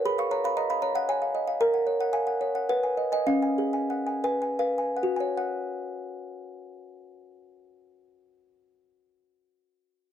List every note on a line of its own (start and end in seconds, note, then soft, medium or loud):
0.05 1.57 G#4 medium
0.05 0.18 B5 loud
0.18 0.39 F5 soft
0.18 0.31 C#6 medium
0.31 0.52 C#5 soft
0.31 0.44 A#5 medium
0.44 0.65 F5 soft
0.44 0.57 B5 medium
0.57 0.70 D#5 soft
0.57 0.70 A#5 medium
0.70 0.90 F5 soft
0.70 0.83 B5 medium
0.82 1.03 C#5 soft
0.82 0.95 A#5 medium
0.95 1.16 F5 soft
0.95 1.09 F#5 medium
1.09 1.29 C#5 soft
1.09 1.59 G#5 medium
1.22 1.42 F5 soft
1.35 1.48 D#5 soft
1.47 1.61 F5 soft
1.61 2.65 A#4 medium
1.61 1.99 A#5 loud
1.74 1.95 F#5 soft
1.87 2.08 C#5 soft
2.00 2.14 F#5 medium
2.13 2.27 F5 soft
2.13 2.66 G#5 medium
2.27 2.49 F#5 medium
2.41 2.63 C#5 soft
2.55 2.68 F#5 soft
2.69 3.25 B4 medium
2.69 3.10 F#5 medium
2.83 3.06 G#5 soft
2.97 3.11 D#5 soft
3.12 3.27 D#5 medium
3.12 3.27 G#5 soft
3.27 5.33 C#4 medium
3.27 4.19 F5 medium
3.42 3.67 G#5 soft
3.58 3.83 G#4 soft
3.73 3.99 G#5 soft
3.90 4.06 F#5 soft
4.07 4.23 G#5 soft
4.24 4.52 B4 soft
4.24 4.41 G#5 medium
4.42 4.70 G#5 soft
4.59 4.89 B4 soft
4.59 5.34 F5 medium
4.78 5.09 G#5 soft
4.97 5.17 F#5 soft
5.03 8.00 F#4 medium
5.16 5.37 G#5 soft
5.20 8.17 C#5 soft
5.37 8.34 F#5 medium